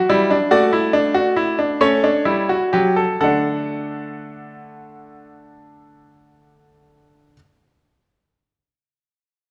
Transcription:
Already playing: E5
0.09 G3 E4
0.30 D4
0.51 A3 F#4 D5
0.73 E4
0.93 D4
1.14 F#4
1.36 E4
1.59 D4
1.81 A3 C#4 C#5
2.04 D4
2.25 G3 E4
2.49 F#4
2.73 F#3 G4
2.96 A4
3.21 D3 A3 D4 A4 F#5

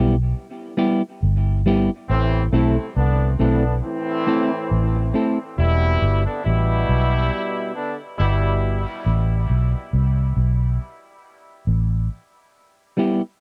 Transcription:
Already playing: B1 G3 B3 E4 G4
0.77 G3 B3 E4 G4
1.23 G1
1.66 G3 B3 E4 G4
2.09 A1 A2 E3 C4
2.52 B1 C3 A3 C4 E4 A4
2.96 C2 D3 B3 D4
3.39 B1 D3 A3 B3 C4 D4 E4 A4
3.83 A2 E3 C4
4.27 A3 C4 E4 A4
4.71 A1
4.96 muted clean electric guitar stroke
5.14 A3 C4 E4 A4
5.58 E1 B2 G3 E4
6.02 G1
6.26 D3 B3 D4
6.44 A1 B2 G3 E4
6.89 B1
7.75 D3 B3 D4
8.17 G1 B2 G3 E4
9.06 A1
9.50 B1
9.93 C2
10.37 B1
11.67 A1
12.97 G3 B3 E4 G4

